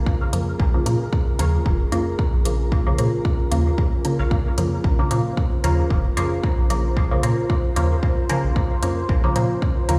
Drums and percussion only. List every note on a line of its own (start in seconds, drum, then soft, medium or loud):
0.06 kick loud
0.33 closed hi-hat medium
0.60 kick loud
0.86 closed hi-hat medium
1.13 kick loud
1.39 closed hi-hat medium
1.66 kick loud
1.92 closed hi-hat medium
2.19 kick loud
2.45 closed hi-hat medium
2.72 kick loud
2.98 closed hi-hat medium
3.25 kick loud
3.52 closed hi-hat medium
3.78 kick loud
4.05 closed hi-hat medium
4.31 kick loud
4.58 closed hi-hat medium
4.84 kick loud
5.11 closed hi-hat medium
5.37 kick loud
5.64 closed hi-hat medium
5.90 kick loud
6.17 closed hi-hat medium
6.44 kick loud
6.70 closed hi-hat medium
6.97 kick loud
7.23 closed hi-hat medium
7.50 kick loud
7.76 closed hi-hat medium
8.03 kick loud
8.29 closed hi-hat medium
8.56 kick loud
8.83 closed hi-hat medium
9.09 kick loud
9.36 closed hi-hat medium
9.62 kick loud
9.89 closed hi-hat medium